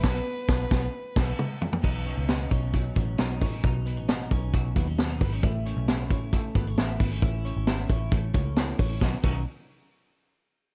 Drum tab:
CC |x---------x-----|x---------------|----------------|----------------|
HH |----------------|--x-x-x-x-x-x-o-|x-x-x-x-x-x-x-o-|x-x-x-x-x-x-x-o-|
SD |o---o-o---o-----|----o-------o---|----o-------o---|----o-------o---|
T2 |------------o---|----------------|----------------|----------------|
FT |--------------oo|----------------|----------------|----------------|
BD |o---o-o---o-----|o-----o-o-o---o-|o-----o-o-o---o-|o-----o-o-o---o-|

CC |----------------|--x-------------|
HH |x-x-x-x-x-x-x-o-|----------------|
SD |----o-------o---|o---------------|
T2 |----------------|----------------|
FT |----------------|----------------|
BD |o-----o-o-o---o-|o-o-------------|